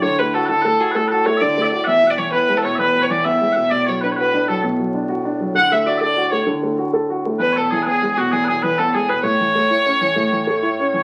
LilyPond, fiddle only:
\new Staff \with { instrumentName = "Fiddle" } { \time 12/8 \key e \mixolydian \tempo 4. = 130 cis''8 b'8 a'8 a'4 gis'8 a'8 a'8 cis''8 d''8. d''16 d''8 | e''8. d''16 cis''8 b'8. a'16 cis''8 b'8. cis''16 d''8 e''4. | d''8 cis''8 b'8 b'4 a'8 r2. | fis''8 e''8 d''8 d''4 cis''8 r2. |
b'8 a'8 gis'8 gis'8.~ gis'32 gis'32 fis'8 gis'8 gis'8 b'8 a'8 gis'8 b'8 | cis''1~ cis''4 r4 | }